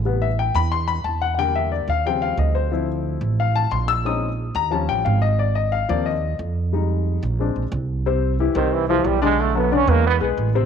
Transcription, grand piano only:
0.05 0.27 C3 medium
0.05 0.27 G3 soft
0.05 0.27 B3 medium
0.22 0.37 E5 medium
0.39 0.55 G5 medium
0.55 0.71 B5 loud
0.72 0.88 C6 loud
0.88 1.04 B5 medium
1.04 1.21 A5 medium
1.22 1.33 F#5 medium
1.35 1.85 D3 medium
1.35 1.86 G3 soft
1.35 1.37 F#5 medium
1.39 1.86 A#3 medium
1.39 1.55 G5 loud
1.55 1.71 E5 medium
1.72 1.88 D5 medium
1.90 2.05 F5 medium
2.06 2.69 C#3 medium
2.06 2.69 F3 soft
2.06 2.69 G3 medium
2.06 2.70 C4 medium
2.06 2.22 G5 medium
2.22 2.38 F5 medium
2.39 2.55 D#5 medium
2.55 2.86 C5 medium
2.71 4.01 F3 medium
2.71 4.02 C4 soft
2.71 4.02 E4 medium
3.40 3.55 F5 medium
3.56 3.72 A5 loud
3.72 3.88 C6 medium
3.88 4.04 E6 loud
4.05 4.27 G#3 soft
4.05 4.27 C4 soft
4.05 4.28 C#4 medium
4.05 4.28 D#4 medium
4.05 4.52 D#6 medium
4.56 4.72 A#5 loud
4.71 5.19 F3 medium
4.71 5.20 G3 medium
4.71 5.20 C#4 medium
4.71 4.88 A5 medium
4.89 5.05 G5 medium
5.05 5.21 F5 medium
5.22 5.38 D#5 medium
5.39 5.55 D5 medium
5.55 5.72 D#5 medium
5.72 5.88 F5 medium
5.89 6.11 F3 medium
5.89 6.11 A#3 medium
5.89 6.12 C4 medium
5.89 6.05 D5 medium
6.06 6.37 D#5 medium
6.73 7.20 G3 medium
6.73 7.20 G#3 medium
6.73 7.21 D#4 medium
7.39 7.61 G#3 medium
7.39 7.62 C4 medium
7.39 7.62 D4 medium
8.06 8.33 C3 medium
8.06 8.33 C4 medium
8.06 8.34 C5 medium
8.40 8.53 E3 medium
8.40 8.53 E4 medium
8.40 8.53 G4 medium
8.56 8.83 C3 medium
8.56 8.83 C4 medium
8.56 8.83 C5 medium
8.89 9.16 E3 medium
8.89 9.16 E4 medium
8.89 9.17 G4 medium
9.22 9.49 D3 medium
9.22 9.49 D4 medium
9.22 9.49 D5 medium
9.55 9.69 F#3 medium
9.55 9.69 F#4 medium
9.55 9.69 A4 medium
9.72 9.85 D3 medium
9.72 9.85 D4 medium
9.72 9.86 D5 medium
9.88 10.15 G#3 medium
9.88 10.15 G#4 medium
9.88 10.15 B4 medium
10.21 10.48 G#3 medium
10.21 10.48 G#4 medium
10.21 10.48 B4 medium
10.55 10.65 C3 medium
10.55 10.65 C4 medium
10.55 10.65 C5 medium

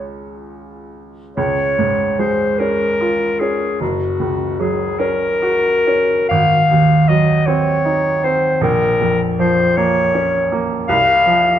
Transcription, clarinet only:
1.36 2.21 C#5 medium
2.19 2.60 C5 medium
2.59 3.42 A#4 medium
3.40 3.80 G#4 medium
3.81 4.61 F#4 medium
4.60 5.01 G#4 medium
4.99 6.28 A#4 medium
6.29 7.10 F5 medium
7.08 7.48 D#5 medium
7.46 8.25 C#5 medium
8.24 8.62 C5 medium
8.63 9.22 A#4 medium
9.39 9.78 C5 medium
9.77 10.62 C#5 medium
10.88 11.59 F5 medium

